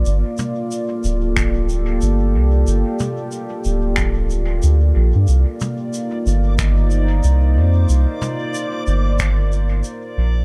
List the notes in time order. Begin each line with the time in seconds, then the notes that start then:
Already playing: A#3 F4 C5 D5
0.06 G1, shaker
0.27 G4 A4
0.38 mid tom, shaker
0.71 shaker
1.04 D1, shaker
1.37 finger snap, kick, shaker
1.69 shaker
2.01 G1, shaker
2.35 C2
2.67 G1, shaker
3.00 mid tom, shaker
3.32 shaker
3.65 D1, shaker
3.96 finger snap, kick, shaker
4.30 shaker
4.63 D2, shaker
4.96 A#1
5.15 G2
5.27 C2 A#3 D5, shaker
5.59 D#4, mid tom, shaker
5.94 shaker
6.09 C5
6.26 G1, shaker
6.59 finger snap, kick, shaker
6.91 shaker
7.23 C2, shaker
7.57 F2
7.89 C2, shaker
8.21 mid tom, shaker
8.54 shaker
8.87 G1, shaker
9.19 finger snap, kick, shaker
9.52 shaker
9.84 shaker
10.17 A#1